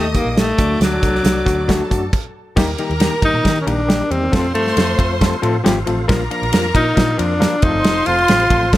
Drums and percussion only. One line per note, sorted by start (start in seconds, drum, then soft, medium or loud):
0.14 kick loud
0.14 closed hi-hat medium
0.37 snare loud
0.37 closed hi-hat medium
0.58 kick loud
0.58 closed hi-hat medium
0.81 snare loud
0.81 closed hi-hat medium
1.03 kick loud
1.03 closed hi-hat medium
1.15 snare soft
1.25 snare loud
1.25 closed hi-hat loud
1.46 kick medium
1.46 closed hi-hat medium
1.69 kick medium
1.69 snare loud
1.69 closed hi-hat medium
1.91 kick loud
1.91 closed hi-hat medium
2.13 kick loud
2.13 crash medium
2.57 kick loud
2.57 snare loud
2.57 crash medium
2.78 ride medium
2.91 ride soft
3.00 snare loud
3.00 ride medium
3.22 kick loud
3.22 ride medium
3.45 kick medium
3.45 snare medium
3.45 ride medium
3.67 ride medium
3.90 snare loud
3.90 ride medium
4.11 ride medium
4.33 kick loud
4.33 snare loud
4.33 ride medium
4.55 ride medium
4.67 snare soft
4.77 snare loud
4.77 ride medium
4.99 kick medium
4.99 ride medium
5.21 kick medium
5.21 snare loud
5.21 ride medium
5.43 ride medium
5.66 snare loud
5.66 ride medium
5.87 ride medium
6.09 kick loud
6.09 snare loud
6.09 ride medium
6.31 ride medium
6.43 ride soft
6.53 snare loud
6.53 ride loud
6.75 kick loud
6.75 ride medium
6.97 kick medium
6.97 snare loud
6.97 ride medium
7.19 ride medium
7.42 snare loud
7.42 ride medium
7.62 kick loud
7.62 ride medium
7.84 snare loud
7.84 ride medium
8.06 ride medium
8.18 ride soft
8.28 snare loud
8.28 ride medium
8.40 ride soft
8.50 kick loud
8.50 ride medium
8.73 kick medium
8.73 snare loud
8.73 ride medium